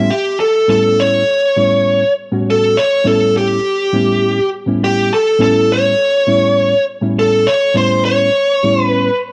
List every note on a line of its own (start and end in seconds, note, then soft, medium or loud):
0.11 0.40 G4 medium
0.40 0.69 A4 medium
0.68 1.22 A2 medium
0.68 1.22 G3 medium
0.68 1.22 B3 medium
0.68 1.22 C#4 medium
0.68 1.23 E4 medium
0.68 1.00 A4 medium
1.00 2.13 C#5 medium
1.56 2.02 A2 medium
1.56 2.02 G3 medium
1.56 2.02 B3 medium
1.56 2.03 C#4 medium
1.56 2.03 E4 medium
2.31 2.75 A2 medium
2.31 2.75 G3 medium
2.31 2.75 B3 medium
2.31 2.75 C#4 medium
2.31 2.76 F#4 medium
2.50 2.78 A4 loud
2.77 3.06 C#5 medium
3.04 3.58 A2 medium
3.04 3.58 G3 medium
3.04 3.58 B3 medium
3.04 3.58 C#4 medium
3.04 3.58 E4 medium
3.04 3.36 A4 medium
3.37 4.49 G4 medium
3.93 4.38 A2 medium
3.93 4.38 G3 medium
3.93 4.38 B3 medium
3.93 4.38 C#4 medium
3.93 4.38 E4 medium
4.66 5.10 A2 medium
4.66 5.10 G3 medium
4.66 5.11 B3 medium
4.66 5.11 C#4 medium
4.66 5.11 E4 medium
4.84 5.13 G4 medium
5.14 5.41 A4 medium
5.39 5.93 A2 medium
5.39 5.93 G3 medium
5.39 5.93 B3 medium
5.39 5.93 C#4 medium
5.39 5.93 E4 medium
5.39 5.71 A4 medium
5.72 6.84 C#5 medium
6.27 6.73 A2 medium
6.27 6.73 G3 medium
6.27 6.73 B3 medium
6.27 6.73 C#4 medium
6.27 6.73 E4 medium
7.01 7.45 A2 medium
7.01 7.46 G3 medium
7.01 7.46 B3 medium
7.01 7.46 C#4 medium
7.01 7.46 E4 medium
7.19 7.48 A4 medium
7.47 7.76 C#5 loud
7.74 8.28 A2 medium
7.74 8.29 G3 medium
7.74 8.29 B3 medium
7.74 8.29 C#4 medium
7.74 8.29 E4 medium
7.74 8.05 C5 medium
8.05 8.83 C#5 medium
8.63 9.08 A2 medium
8.63 9.09 G3 medium
8.63 9.09 B3 medium
8.63 9.09 C#4 medium
8.63 9.09 E4 medium
8.83 9.18 B4 medium